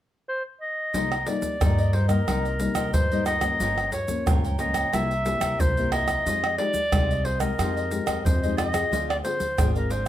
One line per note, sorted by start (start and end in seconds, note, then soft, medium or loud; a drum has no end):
0.29 0.43 C5 medium
0.61 1.29 D#5 loud
0.93 1.22 C2 medium
0.93 1.58 C3 medium
0.93 1.14 G3 medium
0.93 1.14 A#3 medium
0.93 1.09 D#4 medium
0.93 1.14 D#4 medium
0.93 1.09 A#4 medium
0.93 1.10 C5 medium
0.93 1.10 D#5 medium
0.93 pandeiro medium
0.93 shaker medium
0.93 surdo medium
1.12 1.26 A#4 soft
1.12 1.26 C5 soft
1.12 1.26 D#5 soft
1.12 pandeiro soft
1.12 tamborim medium
1.12 shaker soft
1.27 1.55 G3 medium
1.27 1.55 A#3 medium
1.27 1.56 D#4 medium
1.27 1.96 D5 medium
1.27 muted cavaquinho stroke soft
1.27 pandeiro medium
1.27 shaker medium
1.42 pandeiro medium
1.42 shaker medium
1.42 surdo soft
1.60 2.17 G2 loud
1.60 2.24 G2 medium
1.60 1.92 G3 medium
1.60 1.92 A#3 medium
1.60 1.76 D#4 medium
1.60 1.92 D#4 medium
1.60 1.76 A#4 medium
1.60 1.77 C5 medium
1.60 1.77 D#5 medium
1.60 pandeiro medium
1.60 tamborim medium
1.60 shaker medium
1.60 surdo loud
1.78 1.92 A#4 soft
1.78 1.93 C5 soft
1.78 1.93 D#5 medium
1.78 pandeiro soft
1.78 shaker soft
1.93 2.09 D#4 soft
1.93 2.09 A#4 medium
1.93 2.08 C5 medium
1.93 2.08 C5 soft
1.93 2.07 D#5 medium
1.93 pandeiro medium
2.08 2.21 G3 medium
2.08 2.21 A#3 medium
2.08 2.21 D#4 medium
2.08 2.89 A#4 medium
2.08 2.26 A#4 medium
2.08 2.25 C5 medium
2.08 2.25 D#5 medium
2.08 pandeiro medium
2.08 tamborim medium
2.08 shaker medium
2.08 surdo soft
2.27 2.70 C2 medium
2.27 2.91 C3 medium
2.27 2.56 G3 medium
2.27 2.56 A#3 medium
2.27 2.43 D#4 medium
2.27 2.56 D#4 medium
2.27 2.43 A#4 medium
2.27 2.43 C5 medium
2.27 2.43 D#5 medium
2.27 pandeiro medium
2.27 tamborim medium
2.27 shaker medium
2.27 surdo medium
2.45 2.59 A#4 soft
2.45 2.59 C5 soft
2.45 2.60 D#5 soft
2.45 pandeiro soft
2.45 shaker soft
2.60 2.91 G3 medium
2.60 2.92 A#3 medium
2.60 2.92 D#4 medium
2.60 muted cavaquinho stroke soft
2.60 pandeiro medium
2.60 shaker medium
2.75 2.90 C2 medium
2.75 3.09 A#4 medium
2.75 3.08 C5 medium
2.75 3.08 D#5 medium
2.75 pandeiro medium
2.75 tamborim medium
2.75 shaker medium
2.75 surdo soft
2.93 3.50 D2 medium
2.93 3.57 G2 medium
2.93 3.25 C5 loud
2.93 pandeiro medium
2.93 shaker medium
2.93 surdo medium
3.11 3.39 G3 medium
3.11 3.39 A#3 medium
3.11 3.39 D#4 medium
3.11 3.26 A#4 soft
3.11 3.27 C5 soft
3.11 3.26 D#5 medium
3.11 pandeiro soft
3.11 shaker soft
3.26 3.42 D#4 medium
3.26 3.42 A#4 medium
3.26 3.42 C5 medium
3.26 3.89 D#5 loud
3.26 3.41 D#5 medium
3.26 pandeiro medium
3.26 tamborim medium
3.26 shaker medium
3.41 3.87 F3 medium
3.41 3.87 A#3 medium
3.41 3.87 C#4 medium
3.41 3.59 A#4 soft
3.41 3.59 C5 medium
3.41 3.58 D#5 medium
3.41 pandeiro medium
3.41 tamborim medium
3.41 shaker medium
3.41 surdo soft
3.60 3.88 G1 medium
3.60 4.24 G2 medium
3.60 3.76 F4 medium
3.60 3.76 A#4 medium
3.60 3.77 C#5 medium
3.60 3.77 G5 medium
3.60 pandeiro medium
3.60 shaker medium
3.60 surdo medium
3.78 3.92 A#4 soft
3.78 3.92 C#5 soft
3.78 3.92 G5 soft
3.78 pandeiro soft
3.78 tamborim medium
3.78 shaker soft
3.92 4.30 C#5 medium
3.92 muted cavaquinho stroke soft
3.92 pandeiro medium
3.92 shaker medium
3.92 surdo soft
4.08 4.54 F3 medium
4.08 4.54 A#3 medium
4.08 4.55 C#4 medium
4.08 pandeiro medium
4.08 shaker medium
4.08 surdo soft
4.26 4.83 C#2 loud
4.26 4.91 G2 medium
4.26 4.42 F4 medium
4.26 4.42 A#4 medium
4.26 4.43 C#5 medium
4.26 4.43 G5 medium
4.26 pandeiro medium
4.26 tamborim medium
4.26 shaker medium
4.26 surdo loud
4.44 4.58 A#4 soft
4.44 4.58 C#5 medium
4.44 4.59 G5 medium
4.44 pandeiro soft
4.44 shaker soft
4.58 4.88 F3 medium
4.58 4.88 A#3 medium
4.58 4.88 C#4 medium
4.58 4.74 F4 medium
4.58 4.74 A#4 medium
4.58 4.73 C#5 medium
4.58 4.96 D#5 loud
4.58 4.72 G5 medium
4.58 pandeiro medium
4.58 shaker medium
4.74 4.91 A#4 medium
4.74 4.91 C#5 medium
4.74 4.90 G5 medium
4.74 pandeiro medium
4.74 tamborim medium
4.74 shaker medium
4.74 surdo soft
4.92 5.35 C2 loud
4.92 5.57 C3 medium
4.92 5.13 A#3 medium
4.92 5.08 E4 medium
4.92 5.14 E4 medium
4.92 5.14 G4 medium
4.92 5.09 A#4 medium
4.92 5.09 C5 medium
4.92 5.62 E5 loud
4.92 5.09 E5 medium
4.92 pandeiro medium
4.92 tamborim medium
4.92 shaker medium
4.92 surdo medium
5.11 5.25 A#4 soft
5.11 5.25 C5 soft
5.11 5.25 E5 soft
5.11 pandeiro soft
5.11 shaker soft
5.25 5.57 A#3 medium
5.25 5.58 E4 medium
5.25 5.58 G4 medium
5.25 muted cavaquinho stroke soft
5.25 pandeiro medium
5.25 shaker medium
5.40 5.56 C2 medium
5.40 5.75 A#4 medium
5.40 5.74 C5 medium
5.40 5.74 E5 medium
5.40 pandeiro medium
5.40 tamborim medium
5.40 shaker medium
5.40 surdo soft
5.59 6.16 C2 medium
5.59 6.23 G2 medium
5.59 5.92 C5 loud
5.59 pandeiro medium
5.59 shaker medium
5.59 surdo medium
5.77 6.22 A#3 medium
5.77 6.22 E4 medium
5.77 6.22 G4 medium
5.77 5.91 A#4 soft
5.77 5.92 C5 soft
5.77 5.92 E5 soft
5.77 pandeiro soft
5.77 shaker soft
5.92 6.08 E4 medium
5.92 6.08 A#4 medium
5.92 6.08 C5 medium
5.92 6.55 D#5 loud
5.92 6.06 E5 medium
5.92 pandeiro medium
5.92 tamborim medium
6.08 6.25 A#4 soft
6.08 6.25 C5 soft
6.08 6.24 E5 medium
6.08 pandeiro medium
6.08 tamborim medium
6.08 shaker medium
6.08 surdo soft
6.26 6.54 F2 medium
6.26 6.90 F3 soft
6.26 6.55 G#3 soft
6.26 6.55 D#4 medium
6.26 6.42 F4 medium
6.26 6.55 G4 medium
6.26 6.42 G#4 medium
6.26 6.42 C5 medium
6.26 6.43 D#5 medium
6.26 pandeiro medium
6.26 shaker medium
6.26 surdo medium
6.44 6.58 G#4 soft
6.44 6.59 C5 soft
6.44 6.59 D#5 medium
6.44 pandeiro soft
6.44 tamborim medium
6.44 shaker soft
6.58 6.79 G#3 medium
6.58 6.79 D#4 medium
6.58 6.79 G4 medium
6.58 7.27 D5 loud
6.58 muted cavaquinho stroke soft
6.58 pandeiro medium
6.74 pandeiro medium
6.74 shaker medium
6.74 surdo soft
6.92 7.49 C2 loud
6.92 7.56 C3 medium
6.92 7.24 G#3 medium
6.92 7.25 D#4 medium
6.92 7.08 F4 medium
6.92 7.25 G4 medium
6.92 7.08 G#4 medium
6.92 7.09 C5 medium
6.92 7.09 D#5 medium
6.92 pandeiro medium
6.92 tamborim medium
6.92 shaker medium
6.92 surdo loud
7.10 7.24 G#4 soft
7.10 7.24 C5 medium
7.10 7.25 D#5 soft
7.10 pandeiro soft
7.10 shaker soft
7.24 7.41 F4 medium
7.24 7.40 G#4 medium
7.24 7.42 C5 medium
7.24 7.39 C5 medium
7.24 7.39 D#5 medium
7.24 pandeiro medium
7.40 7.53 G#3 medium
7.40 7.53 D#4 medium
7.40 7.54 G4 medium
7.40 7.57 G#4 medium
7.40 8.24 A#4 medium
7.40 7.57 C5 medium
7.40 7.57 D#5 medium
7.40 pandeiro medium
7.40 tamborim medium
7.40 shaker medium
7.40 surdo soft
7.59 8.01 F2 loud
7.59 8.23 F3 medium
7.59 7.88 G#3 medium
7.59 7.88 D#4 medium
7.59 7.75 F4 medium
7.59 7.88 G4 medium
7.59 7.75 G#4 medium
7.59 7.75 C5 medium
7.59 7.75 D#5 medium
7.59 pandeiro medium
7.59 tamborim medium
7.59 shaker medium
7.59 surdo soft
7.76 7.90 G#4 soft
7.76 7.90 C5 soft
7.76 7.90 D#5 medium
7.76 pandeiro soft
7.76 shaker soft
7.91 8.23 G#3 medium
7.91 8.23 D#4 medium
7.91 8.24 G4 medium
7.91 muted cavaquinho stroke soft
7.91 pandeiro medium
7.91 shaker medium
8.06 8.22 F2 medium
8.06 8.40 G#4 medium
8.06 8.40 C5 medium
8.06 8.40 D#5 medium
8.06 pandeiro medium
8.06 tamborim medium
8.06 shaker medium
8.06 surdo soft
8.25 8.82 F2 loud
8.25 8.89 C3 medium
8.25 8.56 C5 medium
8.25 pandeiro medium
8.25 shaker medium
8.25 surdo loud
8.43 8.71 G#3 medium
8.43 8.72 D#4 medium
8.43 8.72 G4 medium
8.43 8.57 G#4 soft
8.43 8.57 C5 soft
8.43 8.58 D#5 soft
8.43 pandeiro soft
8.43 shaker soft
8.57 8.73 F4 medium
8.57 8.73 G#4 medium
8.57 8.72 C5 medium
8.57 9.04 D#5 loud
8.57 8.71 D#5 medium
8.57 pandeiro medium
8.57 tamborim medium
8.57 shaker medium
8.72 9.20 C4 medium
8.72 9.20 F4 medium
8.72 8.90 G#4 soft
8.72 9.20 G#4 medium
8.72 8.90 C5 medium
8.72 8.89 D#5 medium
8.72 pandeiro medium
8.72 tamborim medium
8.72 shaker medium
8.72 surdo soft
8.92 9.20 D2 medium
8.92 9.56 D3 medium
8.92 9.07 D4 medium
8.92 9.08 G#4 medium
8.92 9.08 C5 medium
8.92 9.08 F5 medium
8.92 pandeiro medium
8.92 shaker medium
8.92 surdo medium
9.09 9.23 G#4 soft
9.09 9.23 C5 soft
9.09 9.17 D5 medium
9.09 9.24 F5 medium
9.09 pandeiro soft
9.09 tamborim medium
9.09 shaker soft
9.24 9.45 C4 medium
9.24 9.45 F4 medium
9.24 9.46 G#4 medium
9.24 9.71 C5 medium
9.24 muted cavaquinho stroke soft
9.24 pandeiro medium
9.24 shaker medium
9.40 pandeiro medium
9.40 shaker medium
9.40 surdo soft
9.58 10.08 G#1 loud
9.58 10.08 D3 medium
9.58 9.91 C4 medium
9.58 9.74 D4 medium
9.58 9.91 F4 medium
9.58 9.74 G#4 medium
9.58 9.91 G#4 medium
9.58 9.74 C5 medium
9.58 9.74 F5 medium
9.58 pandeiro medium
9.58 tamborim medium
9.58 shaker medium
9.58 surdo loud
9.75 9.89 G#4 soft
9.75 9.93 A#4 medium
9.75 9.90 C5 soft
9.75 9.90 F5 medium
9.75 pandeiro soft
9.75 shaker soft
9.90 10.06 D4 medium
9.90 10.06 G#4 medium
9.90 10.06 C5 medium
9.90 10.08 C5 medium
9.90 10.04 F5 medium
9.90 pandeiro medium
9.90 shaker medium